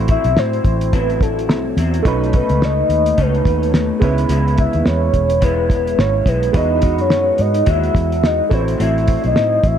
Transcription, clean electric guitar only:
0, 0, Header, 1, 2, 480
1, 0, Start_track
1, 0, Tempo, 562324
1, 1750, Time_signature, 4, 2, 24, 8
1, 8352, End_track
2, 0, Start_track
2, 0, Title_t, "Clean electric guitar"
2, 0, Program_c, 0, 27
2, 0, Note_on_c, 0, 54, 72
2, 76, Note_on_c, 0, 64, 55
2, 83, Note_on_c, 0, 60, 42
2, 90, Note_off_c, 0, 54, 0
2, 93, Note_on_c, 0, 54, 39
2, 793, Note_off_c, 0, 54, 0
2, 793, Note_off_c, 0, 60, 0
2, 793, Note_off_c, 0, 64, 0
2, 793, Note_on_c, 0, 45, 78
2, 796, Note_on_c, 0, 54, 83
2, 804, Note_on_c, 0, 60, 84
2, 804, Note_on_c, 0, 64, 75
2, 1503, Note_off_c, 0, 64, 0
2, 1511, Note_off_c, 0, 45, 0
2, 1512, Note_off_c, 0, 60, 0
2, 1513, Note_on_c, 0, 64, 51
2, 1522, Note_on_c, 0, 60, 50
2, 1529, Note_off_c, 0, 54, 0
2, 1533, Note_on_c, 0, 54, 52
2, 1751, Note_off_c, 0, 64, 0
2, 1752, Note_on_c, 0, 47, 86
2, 1755, Note_off_c, 0, 54, 0
2, 1756, Note_off_c, 0, 60, 0
2, 1758, Note_on_c, 0, 57, 96
2, 1763, Note_on_c, 0, 61, 98
2, 1763, Note_on_c, 0, 63, 91
2, 1983, Note_off_c, 0, 63, 0
2, 1991, Note_off_c, 0, 47, 0
2, 1992, Note_off_c, 0, 61, 0
2, 1993, Note_on_c, 0, 63, 49
2, 1994, Note_off_c, 0, 57, 0
2, 2002, Note_on_c, 0, 61, 47
2, 2010, Note_on_c, 0, 57, 45
2, 2706, Note_off_c, 0, 57, 0
2, 2709, Note_on_c, 0, 47, 71
2, 2711, Note_off_c, 0, 63, 0
2, 2712, Note_off_c, 0, 61, 0
2, 2716, Note_on_c, 0, 57, 80
2, 2716, Note_on_c, 0, 61, 89
2, 2722, Note_on_c, 0, 63, 89
2, 3423, Note_off_c, 0, 63, 0
2, 3427, Note_on_c, 0, 64, 59
2, 3429, Note_off_c, 0, 47, 0
2, 3433, Note_off_c, 0, 57, 0
2, 3436, Note_off_c, 0, 61, 0
2, 3439, Note_on_c, 0, 59, 52
2, 3447, Note_on_c, 0, 56, 55
2, 3658, Note_off_c, 0, 56, 0
2, 3660, Note_on_c, 0, 49, 78
2, 3668, Note_off_c, 0, 64, 0
2, 3668, Note_on_c, 0, 56, 90
2, 3671, Note_off_c, 0, 59, 0
2, 3681, Note_on_c, 0, 59, 94
2, 3688, Note_on_c, 0, 64, 91
2, 4607, Note_off_c, 0, 49, 0
2, 4617, Note_on_c, 0, 49, 70
2, 4621, Note_off_c, 0, 56, 0
2, 4623, Note_off_c, 0, 59, 0
2, 4625, Note_on_c, 0, 56, 82
2, 4626, Note_off_c, 0, 64, 0
2, 4626, Note_on_c, 0, 59, 82
2, 4630, Note_on_c, 0, 64, 82
2, 5337, Note_off_c, 0, 64, 0
2, 5341, Note_on_c, 0, 64, 49
2, 5343, Note_off_c, 0, 49, 0
2, 5345, Note_off_c, 0, 59, 0
2, 5349, Note_on_c, 0, 59, 51
2, 5355, Note_off_c, 0, 56, 0
2, 5359, Note_on_c, 0, 56, 44
2, 5572, Note_off_c, 0, 56, 0
2, 5576, Note_on_c, 0, 52, 82
2, 5583, Note_off_c, 0, 59, 0
2, 5583, Note_on_c, 0, 56, 78
2, 5585, Note_off_c, 0, 64, 0
2, 5587, Note_on_c, 0, 63, 85
2, 5590, Note_on_c, 0, 66, 89
2, 5809, Note_off_c, 0, 66, 0
2, 5819, Note_on_c, 0, 66, 50
2, 5822, Note_off_c, 0, 52, 0
2, 5822, Note_off_c, 0, 63, 0
2, 5826, Note_off_c, 0, 56, 0
2, 5832, Note_on_c, 0, 63, 47
2, 5837, Note_on_c, 0, 56, 42
2, 6534, Note_off_c, 0, 56, 0
2, 6539, Note_on_c, 0, 52, 71
2, 6545, Note_on_c, 0, 56, 70
2, 6550, Note_off_c, 0, 63, 0
2, 6550, Note_off_c, 0, 66, 0
2, 6553, Note_on_c, 0, 66, 85
2, 7256, Note_off_c, 0, 66, 0
2, 7259, Note_on_c, 0, 64, 57
2, 7266, Note_off_c, 0, 56, 0
2, 7271, Note_on_c, 0, 60, 48
2, 7276, Note_on_c, 0, 54, 42
2, 7301, Note_off_c, 0, 52, 0
2, 7493, Note_on_c, 0, 45, 71
2, 7497, Note_off_c, 0, 54, 0
2, 7503, Note_off_c, 0, 64, 0
2, 7506, Note_off_c, 0, 60, 0
2, 7507, Note_on_c, 0, 54, 80
2, 7516, Note_on_c, 0, 60, 86
2, 7524, Note_on_c, 0, 64, 84
2, 8352, Note_off_c, 0, 45, 0
2, 8352, Note_off_c, 0, 54, 0
2, 8352, Note_off_c, 0, 60, 0
2, 8352, Note_off_c, 0, 64, 0
2, 8352, End_track
0, 0, End_of_file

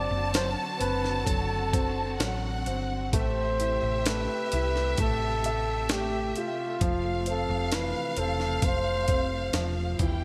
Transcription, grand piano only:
0, 0, Header, 1, 2, 480
1, 0, Start_track
1, 0, Tempo, 927357
1, 1618, Time_signature, 4, 2, 24, 8
1, 2578, Tempo, 913242
1, 5344, End_track
2, 0, Start_track
2, 0, Title_t, "Grand piano"
2, 0, Program_c, 0, 0
2, 0, Control_c, 0, 64, 127
2, 0, Note_on_c, 0, 54, 70
2, 0, Note_on_c, 0, 60, 53
2, 168, Note_off_c, 0, 54, 0
2, 176, Note_on_c, 0, 54, 57
2, 402, Note_off_c, 0, 60, 0
2, 410, Note_on_c, 0, 60, 56
2, 641, Note_off_c, 0, 54, 0
2, 649, Note_on_c, 0, 54, 48
2, 888, Note_off_c, 0, 60, 0
2, 896, Note_on_c, 0, 60, 52
2, 1130, Note_off_c, 0, 54, 0
2, 1138, Note_on_c, 0, 54, 54
2, 1375, Note_off_c, 0, 60, 0
2, 1382, Note_on_c, 0, 60, 48
2, 1605, Note_off_c, 0, 54, 0
2, 1613, Note_off_c, 0, 60, 0
2, 1622, Note_on_c, 0, 57, 70
2, 1623, Control_c, 0, 64, 0
2, 1708, Control_c, 0, 64, 127
2, 1860, Note_on_c, 0, 64, 50
2, 2096, Note_off_c, 0, 57, 0
2, 2104, Note_on_c, 0, 57, 58
2, 2338, Note_off_c, 0, 64, 0
2, 2346, Note_on_c, 0, 64, 57
2, 2574, Note_off_c, 0, 57, 0
2, 2582, Note_on_c, 0, 57, 52
2, 2829, Note_on_c, 0, 76, 58
2, 3053, Note_off_c, 0, 57, 0
2, 3061, Note_on_c, 0, 57, 63
2, 3283, Note_off_c, 0, 64, 0
2, 3306, Note_on_c, 0, 67, 54
2, 3523, Note_off_c, 0, 76, 0
2, 3525, Note_off_c, 0, 57, 0
2, 3535, Note_off_c, 0, 67, 0
2, 3541, Note_on_c, 0, 53, 67
2, 3545, Control_c, 0, 64, 0
2, 3630, Control_c, 0, 64, 127
2, 3782, Note_on_c, 0, 60, 52
2, 4020, Note_on_c, 0, 52, 61
2, 4250, Note_off_c, 0, 60, 0
2, 4258, Note_on_c, 0, 60, 63
2, 4731, Note_off_c, 0, 60, 0
2, 4739, Note_on_c, 0, 60, 62
2, 4957, Note_off_c, 0, 52, 0
2, 4970, Note_off_c, 0, 53, 0
2, 4977, Note_on_c, 0, 53, 63
2, 5204, Note_off_c, 0, 60, 0
2, 5210, Note_off_c, 0, 53, 0
2, 5219, Note_on_c, 0, 52, 68
2, 5224, Control_c, 0, 64, 0
2, 5305, Control_c, 0, 64, 127
2, 5344, Note_off_c, 0, 52, 0
2, 5344, End_track
0, 0, End_of_file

